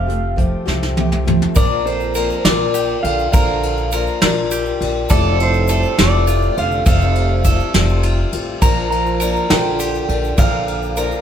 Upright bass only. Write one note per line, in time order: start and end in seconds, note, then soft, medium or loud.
0.00 0.52 F1 medium
0.67 1.40 C2 medium
1.56 2.29 A#1 loud
2.45 2.93 A#1 medium
3.04 3.28 A#1 medium
3.34 4.06 A#1 loud
4.22 4.70 A#1 medium
4.81 5.05 A#1 medium
5.11 5.83 F1 loud
5.99 6.47 F1 medium
6.58 6.81 F1 medium
6.86 7.59 F1 medium
7.75 8.23 F1 medium
8.33 8.57 A1 medium
8.62 9.34 A#1 loud
9.50 9.98 A#1 medium
10.09 10.33 A#1 medium
10.38 11.10 A#1 loud